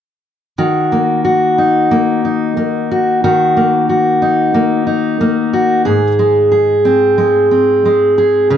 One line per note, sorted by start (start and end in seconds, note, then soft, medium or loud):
0.58 3.24 D#3 medium
0.58 1.24 F#4 soft
0.92 1.90 A#3 soft
1.25 2.91 F#4 medium
1.58 2.24 D#4 soft
1.91 2.56 A#3 soft
2.25 4.22 D#4 soft
2.57 3.56 A#3 soft
2.91 3.24 F#4 soft
3.24 6.74 D#3 medium
3.24 3.89 F#4 soft
3.57 4.53 A#3 soft
3.89 5.53 F#4 soft
4.22 4.86 D#4 soft
4.54 5.20 A#3 soft
4.87 6.85 D#4 soft
5.21 5.95 A#3 soft
5.53 5.85 F#4 medium
5.85 8.50 G#2 medium
5.85 6.51 G#4 medium
6.19 7.17 G#3 soft
6.52 8.18 G#4 soft
6.85 7.50 C4 soft
7.18 7.85 G#3 soft
7.51 8.57 C4 soft
7.85 8.57 G#3 soft
8.18 8.51 G#4 medium
8.50 8.57 C#3 medium
8.50 8.57 G#4 soft